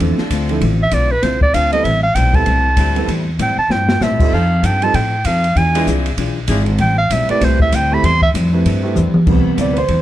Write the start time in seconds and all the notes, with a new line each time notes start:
Already playing: F3 C4 D4 A4
0.00 E2 D3 F3 A3 C4 D4 E4 F4 A4, ride
0.18 F3 C4 D4 A4, muted upright bass stroke, snare
0.30 D2 D3 A3 C4 F4, kick, hi-hat pedal, ride
0.49 F3 C4 D4 E4 A4, ride
0.61 A1 D3 A3 C4 F4, kick, ride
0.82 E5
0.91 B1 D3 A3 C4 F4 D5, kick, hi-hat pedal, ride
1.11 B4
1.22 C2 D3 A3 C4 F4 C5, kick, snare, ride
1.41 D5, kick
1.54 D2 D3 F3 A3 C4 D4 F4 A4 F5, kick, hi-hat pedal, ride
1.72 G3 B3 C4 E4 A4 D#5, ride
1.84 A1 A2 G3 C4 E4 E5, kick, ride
2.03 F5
2.15 B1 A2 G3 C4 E4 G5, kick, hi-hat pedal, ride
2.33 G3 B3 C4 E4 A4 A5, kick, ride
2.46 C2 A2 G3 C4, kick, ride
2.50 E4
2.77 D2 A2 G3 C4 E4 A4, kick, hi-hat pedal, ride
2.96 G3 B3 C4 E4 A4, ride
3.08 E2 A2 G3 C4 E4, kick, ride
3.39 A2 G3 C4 E4 G5, kick, hi-hat pedal, ride
3.57 A5, muted upright bass stroke
3.68 G2 A2 G3 C4 E4 G5, snare
3.89 snare
4.00 A2 C3 G3 C4 E4 A4 E5, snare, hi-hat pedal
4.05 E4
4.11 A2
4.20 G2 G3 C4 D#4 F4 A4, kick, crash
4.32 F2 F3 C4 D#4 A4 F5
4.62 G2 F3 C4 D#4 A4 G5, kick, hi-hat pedal, ride
4.82 G3 C4 D#4 F4 A4 A5, ride
4.94 A2 F3 C4 D#4 A4 G5, kick, ride
5.25 F2 F3 C4 D#4 A4 F5, kick, hi-hat pedal, ride
5.44 ride
5.55 E2 E3 D4 F4 G#4 G#5, kick, ride
5.74 F3 G#3 D4 E4 F4 G#4 B4, ride
5.87 C2 E3 D4 F4 G#4, kick, hi-hat pedal
6.06 ride
6.17 B1 E3 D4 F4 G#4, kick, ride
6.48 G#1 E3 F3 D4 E4 F4 G#4, kick, hi-hat pedal, ride
6.52 G#4
6.66 ride
6.78 A1 A2 G3 C4 E4 G5, kick, ride
6.98 F5
7.10 B1 A2 G3 C4 E4 E5, kick, hi-hat pedal, ride
7.29 A3 C4 E4 G4 B4 D5, muted upright bass stroke, ride
7.41 C2 A2 G3 C4 E4 C5, kick, snare, ride
7.60 E5, kick
7.72 D2 A2 G3 C4 E4 G5, kick, hi-hat pedal, ride
7.91 A3 C4 E4 G4 A4 B5
8.03 E2 A2 G3 C4 E4 C6, kick, ride
8.22 E5, kick
8.34 F2 A2 G3 C4 E4, kick, hi-hat pedal, ride
8.53 A3 C4 E4 G4 B4
8.65 G2 A2 G3 C4 E4, kick, ride
8.83 A3 C4 E4 G4 B4
8.96 E2 A2 G3 C4 E4, hi-hat pedal, mid tom
9.14 muted upright bass stroke, mid tom
9.26 C2 A2 C3 G3 B3 C4 E4, kick, crash
9.45 muted upright bass stroke
9.57 D2 A2 G3 C4 E4 D5, kick, hi-hat pedal, ride
9.73 B4, ride
9.78 C5
9.88 E2 A2 G3 C4 E4, kick, ride